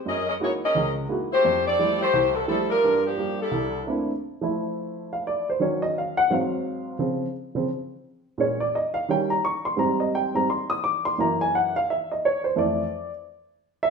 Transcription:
0.06 upright piano F#2, saxophone section C#4 G#4 A#4 D#5
0.29 saxophone section C#4 G#4 A#4 D#5
0.40 upright piano G#3 A#3 D#4 E4 F#4, saxophone section A#3 E4 G#4 C#5
0.64 saxophone section C#4 G#4 A#4 D#5
0.75 upright piano C#2 C#3
1.09 upright piano G#3 A#3 D#4 E4 F#4
1.32 saxophone section A3 E4 G4 C5
1.45 upright piano F2
1.67 saxophone section C4 G4 A4 D5
1.79 upright piano F3 G3 A3 E4
2.01 saxophone section A3 E4 G4 C5
2.13 upright piano C2
2.35 saxophone section G3 C4 E4 A4
2.48 upright piano F3 G3 A3 E4, saxophone section G3 C4 E4 A4
2.70 saxophone section G3 D4 F4 A#4
2.84 upright piano G2
3.06 saxophone section F3 A#3 D4 G4
3.18 upright piano G3 A#3 F4
3.42 saxophone section G3 D4 E4 A4
3.51 upright piano C2
3.87 upright piano A3 A#3 C4 D4 E4
4.41 upright piano F3 A3 E4
5.13 upright piano F5
5.27 upright piano D5
5.50 upright piano C5
5.60 upright piano D#3 F#3 C#4 C#5
5.82 upright piano D#5
5.98 upright piano F5
6.17 upright piano F#5
6.30 upright piano G#2 F#3 C4 F5
6.99 upright piano C#3 F3 C4
7.55 upright piano C#3 F3 C4
8.38 upright piano A#2 G#3 C#4 C#5
8.60 upright piano D5
8.75 upright piano D#5
8.94 upright piano F5
9.09 upright piano D#3 G3 C#4 G5
9.30 upright piano A#5
9.45 upright piano C#6
9.65 upright piano C6
9.77 upright piano G#2 G3 C4 A#5
10.00 upright piano D#5
10.15 upright piano G5
10.35 upright piano G#2 G3 C4 A#5
10.50 upright piano C6
10.70 upright piano D#6
10.84 upright piano D6
11.05 upright piano C6
11.18 upright piano F#2 E3 A#3 A#5
11.41 upright piano G#5
11.55 upright piano F#5
11.76 upright piano F5
11.90 upright piano E5
12.12 upright piano D#5
12.25 upright piano C#5
12.44 upright piano C5
12.56 upright piano F2 E3 A3 D5
13.83 upright piano E5

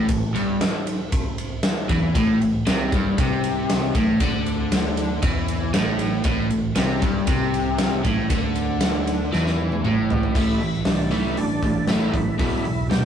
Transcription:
0.09 fingered electric bass A1, overdriven electric guitar A2, kick, ride
0.34 fingered electric bass G1, overdriven electric guitar G2, ride
0.61 snare, ride
0.87 ride
1.12 kick, ride
1.38 ride
1.63 snare, ride
1.89 fingered electric bass E2, overdriven electric guitar E3, kick, ride
2.15 fingered electric bass A1, overdriven electric guitar A2, kick, ride
2.41 fingered electric bass A1, overdriven electric guitar A2, ride
2.67 fingered electric bass C2, overdriven electric guitar C3, snare, ride
2.92 fingered electric bass G1, overdriven electric guitar G2, kick, ride
3.18 fingered electric bass C2, overdriven electric guitar C3, kick, ride
3.44 ride
3.70 snare, ride
3.94 fingered electric bass A1, overdriven electric guitar A2, kick, ride
4.20 fingered electric bass D2, overdriven electric guitar D3, kick, ride
4.46 ride
4.72 snare, ride
4.97 ride
5.22 fingered electric bass E2, overdriven electric guitar E3, kick, ride
5.48 ride
5.74 fingered electric bass A1, overdriven electric guitar A2, snare, ride
5.99 ride
6.24 fingered electric bass A1, overdriven electric guitar A2, kick, ride
6.50 fingered electric bass A1, overdriven electric guitar A2, ride
6.76 fingered electric bass C2, overdriven electric guitar C3, snare, ride
7.01 fingered electric bass G1, overdriven electric guitar G2, kick, ride
7.27 fingered electric bass C2, overdriven electric guitar C3, kick, ride
7.54 ride
7.78 snare, ride
8.04 fingered electric bass A1, overdriven electric guitar A2, kick, ride
8.30 fingered electric bass D2, overdriven electric guitar D3, kick, ride
8.56 ride
8.81 snare, ride
9.07 ride
9.32 fingered electric bass E2, overdriven electric guitar E3, snare
9.46 snare
9.72 high tom
9.84 fingered electric bass A1, overdriven electric guitar A2, mid tom
10.10 floor tom
10.23 floor tom
10.32 fingered electric bass A1, overdriven electric guitar A2 E3 A3, tonewheel organ E4, kick, crash
10.59 fingered electric bass A1, overdriven electric guitar A2 E3, open hi-hat
10.74 snare
10.85 fingered electric bass C2, overdriven electric guitar A2 E3, tonewheel organ D4, snare, open hi-hat
11.11 overdriven electric guitar A2 E3 A3, tonewheel organ E4, open hi-hat
11.37 fingered electric bass G1, overdriven electric guitar A2 E3, tonewheel organ D4, open hi-hat
11.63 fingered electric bass A1, overdriven electric guitar A2 E3, kick, open hi-hat
11.87 fingered electric bass A1, overdriven electric guitar A2 E3 A3, tonewheel organ E4, snare, open hi-hat
12.14 fingered electric bass A1, overdriven electric guitar A2 E3, kick, open hi-hat
12.38 fingered electric bass B1, overdriven electric guitar E2 B2 E3, tonewheel organ E4, kick, open hi-hat
12.64 fingered electric bass B1, overdriven electric guitar E2 B2, open hi-hat
12.89 fingered electric bass D2, overdriven electric guitar E2 B2, tonewheel organ G4, snare, open hi-hat

